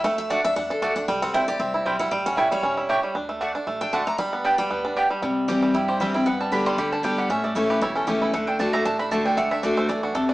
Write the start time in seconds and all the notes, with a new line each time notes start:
0.04 D2 A3 F#5
0.18 E5
0.30 A3 D4 F#4 D5 F#5
0.45 D4 E5
0.56 E2 D4 F#5
0.70 D4 A4
0.82 D2 A3 F#4 D5 F#5
0.96 D4 F#5
1.08 C2 G3 G5
1.22 C4 F#5
1.34 D2 C4 E4 C5 E5 G5
1.48 G4 D5
1.59 C2 C4 E5
1.74 E4
1.85 B1 G3 C4 E4 C5 G5
1.99 E4 F#5
2.11 A1 G3 G5
2.26 C#4 F#5
2.37 A3 E4 C#5 E5 G5
2.51 G3 C#5
2.63 E1 C#4
2.77 E4
2.89 A3 E4 G4 C#5 G5
3.03 G3
3.15 D2 D4
3.29 A3
3.41 A3 D4 F#4 D5 F#5
3.55 D4
3.67 A1 A3
3.81 D4 G5
3.93 D3 A3 F#4 D5 F#5 A5
4.07 A3 A#5
4.18 G1 G3 B5
4.33 B3
4.44 B3 D4 G4 D5 G5
4.58 G3 G5
4.71 D2 B3
4.85 D4
4.96 B3 G4 D5 G5
5.10 G3
5.22 C2 C3 G3
5.48 E3 G3 C4 E4 G4
5.63 G3
5.74 G1 G2 E4 G4
5.88 G4 C5
6.00 E3 G3 C4 E4 E5
6.14 C4 E4 G5
6.26 G1 G2 B3 F#5
6.41 G3 A5
6.52 D3 G3 B3 D4 G4 B5
6.66 G3 C6
6.78 D2 D3 G4 B5
6.92 D4 A5
7.03 D3 G3 B3 G4 G5
7.18 G4 F#5
7.29 A1 A2 C#4 E5
7.44 A3 D5
7.55 A1 E3 A3 C#4 E4 C#5
7.70 G4 B4
7.81 B1 E2 E4 C#5
7.96 C#4 A4
8.07 C#2 E3 A3 C#4 E4 G4
8.22 E4
8.33 D2 D3 A3 F#5
8.47 D4 G5
8.59 D3 A3 D4 F#4 A5
8.73 A3 A#5
8.85 A1 A2 D4 A5
8.99 D4 B5
9.11 D3 A3 D4 F#4 A5
9.25 D4 G5
9.37 D2 D3 A3 F#5
9.51 D4 E5
9.63 D3 A3 D4 F#4 D5
9.77 A3 C5
9.88 E2 E3 D4 D5
10.03 D4 F#4
10.15 D2 C3 A3 A4
10.29 D4 D5